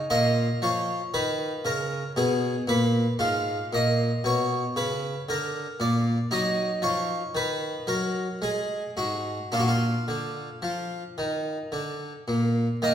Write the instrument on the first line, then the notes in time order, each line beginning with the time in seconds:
harpsichord
0.10 A#2 F4 D#5
0.62 F3 C#5
1.14 D#3 B4
1.65 C#3 A#4
2.16 B2 G#4
2.67 A#2 B4
3.19 G#2 F4 F5
3.73 A#2 D#5
4.24 B2 C#5
4.76 C#3 B4
5.29 D3 A#4
5.80 A#2 D5
6.31 F#3 D#4 D#5
6.82 F3 C#5
7.35 D#3 B4
7.87 F#3 A#4
8.42 G#3 G#4
8.97 G#2 F#4
9.52 A#2 D4 F4
9.60 F#4
9.68 F4
10.08 D3
10.62 F3
11.18 D#3
11.72 D3
12.28 A#2
12.82 D#3 A#3 D#5